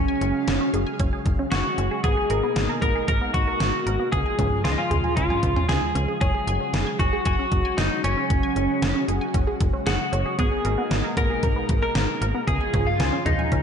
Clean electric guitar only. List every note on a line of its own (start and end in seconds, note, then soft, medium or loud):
0.00 0.70 C#4 medium
1.52 2.00 F#4 medium
2.04 2.82 G#4 loud
2.82 3.06 A#4 loud
3.08 3.32 A#4 loud
3.34 4.08 F#4 loud
4.12 4.64 G#4 loud
4.64 4.72 F4 medium
4.72 4.79 D#4 medium
4.78 5.15 F4 medium
5.16 5.68 F4 medium
5.69 6.17 G#4 medium
6.21 6.99 G#4 loud
7.00 7.24 F#4 medium
7.26 7.79 F#4 medium
7.78 8.04 D#4 medium
8.04 9.04 C#4 medium
9.87 10.35 F#4 medium
10.39 11.13 G#4 loud
11.17 11.81 A#4 loud
11.83 12.44 A#4 loud
12.48 12.88 G#4 loud
12.87 13.23 F4 medium
13.26 13.63 D#4 medium